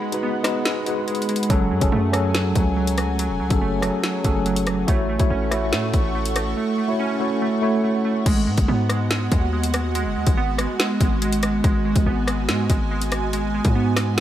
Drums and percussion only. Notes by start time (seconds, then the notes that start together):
0.12 closed hi-hat
0.44 cross-stick, snare, closed hi-hat
0.66 snare
0.86 closed hi-hat
1.08 closed hi-hat
1.15 closed hi-hat
1.22 closed hi-hat
1.29 closed hi-hat
1.36 closed hi-hat
1.43 closed hi-hat
1.50 kick, closed hi-hat
1.81 kick, closed hi-hat
2.13 cross-stick, closed hi-hat
2.35 snare
2.55 kick, closed hi-hat
2.87 closed hi-hat
2.98 cross-stick, closed hi-hat
3.19 closed hi-hat
3.50 kick, closed hi-hat
3.82 cross-stick, closed hi-hat
4.04 snare
4.25 kick, closed hi-hat
4.46 closed hi-hat
4.56 closed hi-hat
4.67 cross-stick, closed hi-hat
4.88 kick, closed hi-hat
5.20 kick, closed hi-hat
5.51 cross-stick, closed hi-hat
5.73 snare
5.94 kick, closed hi-hat
6.25 closed hi-hat
6.36 cross-stick, closed hi-hat
8.26 kick, closed hi-hat, crash
8.58 kick, closed hi-hat
8.89 cross-stick, closed hi-hat
9.11 snare
9.32 kick, closed hi-hat
9.63 closed hi-hat
9.74 cross-stick, closed hi-hat
9.95 closed hi-hat
10.27 kick, closed hi-hat
10.58 cross-stick, closed hi-hat
10.80 snare
11.01 kick, closed hi-hat
11.22 closed hi-hat
11.33 closed hi-hat
11.43 cross-stick, closed hi-hat
11.64 kick, closed hi-hat
11.96 kick, closed hi-hat
12.28 cross-stick, closed hi-hat
12.49 snare
12.70 kick, closed hi-hat
13.02 closed hi-hat
13.12 cross-stick, closed hi-hat
13.33 closed hi-hat
13.65 kick, closed hi-hat
13.97 cross-stick, snare, closed hi-hat